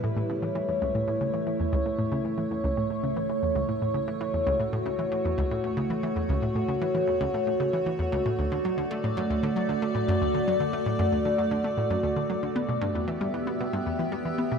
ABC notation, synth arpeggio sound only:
X:1
M:4/4
L:1/16
Q:1/4=115
K:Amix
V:1 name="Synth arpeggio sound" clef=bass
A,, A,, C, E, E, E,, C,, A,, A,, C, E, E, E,, C,, A,, A,, | C, E, E, E,, C,, A,, A,, C, E, E, E,, C,, A,, A,, C, E, | E, E,, C,, A,, A,, C, E, E, E,, C,, A,, A,, C, E, E, E,, | C,, A,, A,, C, E, E, E,, C,, A,, A,, C, E, E, E,, C,, A,, |
D,, D, F, D, A, A,, F,, D,, D, F, D, A, A,, F,, D,, D, | F, D, A, A,, F,, D,, D, F, D, A, A,, F,, D,, D, F, D, | B, B,, G,, E,, E, G, E, B, B,, G,, E,, E, G, E, B, B,, |]